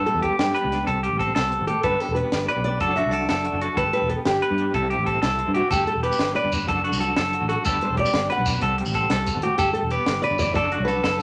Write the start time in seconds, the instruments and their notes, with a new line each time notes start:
Already playing: clean electric guitar G2 A4
0.05 clean electric guitar G3, steel-string acoustic guitar A4, closed hi-hat
0.14 fingered electric bass E2
0.22 clean electric guitar B3 G4, steel-string acoustic guitar G4, kick, closed hi-hat
0.39 fingered electric bass G2, clean electric guitar D4, steel-string acoustic guitar G4, snare, closed hi-hat
0.55 clean electric guitar B3 B4, closed hi-hat
0.64 fingered electric bass C#2
0.72 clean electric guitar D4, snare, closed hi-hat
0.87 fingered electric bass C2, clean electric guitar C3 A4, kick, closed hi-hat
1.03 clean electric guitar G3 G4, closed hi-hat
1.12 fingered electric bass A1
1.19 clean electric guitar C4 A4, kick, closed hi-hat
1.34 fingered electric bass C2, clean electric guitar C3 A4, snare, closed hi-hat
1.51 clean electric guitar B2, closed hi-hat
1.60 fingered electric bass G#1
1.67 clean electric guitar A2 G4, steel-string acoustic guitar A4, closed hi-hat
1.83 fingered electric bass G1, clean electric guitar G2 G3 B3 D4 A4, steel-string acoustic guitar B4, kick, closed hi-hat
2.00 clean electric guitar G3, steel-string acoustic guitar A4, closed hi-hat
2.09 fingered electric bass E1
2.15 clean electric guitar B3, steel-string acoustic guitar B4, closed hi-hat
2.32 fingered electric bass G1, clean electric guitar D4, snare, closed hi-hat
2.48 clean electric guitar B3 B4, steel-string acoustic guitar D5, closed hi-hat
2.56 fingered electric bass B1
2.64 clean electric guitar D4, steel-string acoustic guitar D5, closed hi-hat
2.80 fingered electric bass F#1, clean electric guitar F#3 D4 F#4 A4, kick, closed hi-hat
2.96 clean electric guitar D4 F#4, steel-string acoustic guitar E5, closed hi-hat
3.06 fingered electric bass C2
3.11 clean electric guitar F#4 A4, steel-string acoustic guitar D5, closed hi-hat
3.29 fingered electric bass F#1, clean electric guitar A4, snare, closed hi-hat
3.45 clean electric guitar F#4, closed hi-hat
3.53 fingered electric bass F#1
3.61 clean electric guitar F#4 A4, closed hi-hat
3.76 fingered electric bass G1, clean electric guitar G2 A4, steel-string acoustic guitar B4, kick, closed hi-hat
3.93 clean electric guitar G3, steel-string acoustic guitar B4, closed hi-hat
4.02 fingered electric bass E1
4.09 clean electric guitar B3, steel-string acoustic guitar A4, kick, closed hi-hat
4.25 fingered electric bass G1, clean electric guitar D4, steel-string acoustic guitar G4, snare, closed hi-hat
4.42 clean electric guitar B3 B4, closed hi-hat
4.51 fingered electric bass G2
4.58 clean electric guitar D4, closed hi-hat
4.73 fingered electric bass C2, clean electric guitar C3 G3 C4 E4 A4, kick, closed hi-hat
4.90 clean electric guitar G3 G4, closed hi-hat
4.99 fingered electric bass A1
5.06 clean electric guitar C4 A4, kick, closed hi-hat
5.22 fingered electric bass C2, clean electric guitar E4 A4, snare, closed hi-hat
5.39 clean electric guitar C4, closed hi-hat
5.48 fingered electric bass G2
5.54 clean electric guitar E4 G4, steel-string acoustic guitar F#4, closed hi-hat
5.71 fingered electric bass G1, clean electric guitar G2 A4, steel-string acoustic guitar G4, kick, closed hi-hat, shekere
5.87 clean electric guitar G3, steel-string acoustic guitar A4, closed hi-hat
5.95 fingered electric bass E1
6.03 clean electric guitar B3 G4, steel-string acoustic guitar B4, closed hi-hat
6.12 shekere
6.19 fingered electric bass G1, clean electric guitar D4, snare, closed hi-hat
6.35 clean electric guitar B3 B4, steel-string acoustic guitar D5, closed hi-hat
6.44 fingered electric bass G1
6.52 clean electric guitar D4, closed hi-hat, shekere
6.60 shekere
6.67 fingered electric bass F#1, clean electric guitar F#3 D4 F#4 A4, kick, closed hi-hat
6.83 clean electric guitar D4 F#4, closed hi-hat
6.92 fingered electric bass C2, shekere
7.00 clean electric guitar F#4 A4, closed hi-hat, shekere
7.16 fingered electric bass F#1, clean electric guitar A4, snare, closed hi-hat
7.33 clean electric guitar F#4, closed hi-hat
7.41 fingered electric bass A1
7.49 clean electric guitar F#4, steel-string acoustic guitar A4, closed hi-hat
7.65 fingered electric bass G1, clean electric guitar G2 G3 B3 D4 A4, steel-string acoustic guitar B4, kick, closed hi-hat, shekere
7.81 clean electric guitar G3, steel-string acoustic guitar C5, closed hi-hat
7.90 fingered electric bass E1
7.97 clean electric guitar B3 G4, steel-string acoustic guitar D5, kick, closed hi-hat
8.05 shekere
8.14 fingered electric bass G1, clean electric guitar D4, snare, closed hi-hat
8.30 clean electric guitar B3 B4, steel-string acoustic guitar F#5, closed hi-hat
8.38 fingered electric bass B1
8.46 clean electric guitar D4, closed hi-hat, shekere
8.54 shekere
8.61 fingered electric bass C2, clean electric guitar C3 A4, kick, closed hi-hat
8.78 clean electric guitar G3, muted clean electric guitar stroke, closed hi-hat
8.86 fingered electric bass A1, shekere
8.94 clean electric guitar C4 A4, kick, closed hi-hat, shekere
9.10 fingered electric bass C2, clean electric guitar C3 A4, snare, closed hi-hat
9.27 clean electric guitar B2, closed hi-hat, shekere
9.35 fingered electric bass G#1
9.42 clean electric guitar A2 G4, steel-string acoustic guitar F#4, closed hi-hat
9.58 fingered electric bass G1, steel-string acoustic guitar G4, clean electric guitar A4, muted clean electric guitar stroke, kick, closed hi-hat, shekere
9.73 clean electric guitar G3, steel-string acoustic guitar A4, closed hi-hat
9.82 fingered electric bass E1
9.91 clean electric guitar B3 G4, steel-string acoustic guitar B4, closed hi-hat
10.06 fingered electric bass G1, clean electric guitar C3, snare, closed hi-hat
10.22 clean electric guitar D3 B4, steel-string acoustic guitar D5, closed hi-hat
10.31 fingered electric bass G1
10.39 clean electric guitar E3, steel-string acoustic guitar D5, snare, closed hi-hat, shekere
10.47 shekere
10.54 fingered electric bass F#1, clean electric guitar F#3 D4 F#4 A4, steel-string acoustic guitar D5, kick, closed hi-hat
10.72 clean electric guitar D4 F#4, closed hi-hat
10.79 fingered electric bass C2
10.85 clean electric guitar F#4 A4, steel-string acoustic guitar B4, closed hi-hat, shekere
11.04 fingered electric bass F#1, clean electric guitar A4, snare, closed hi-hat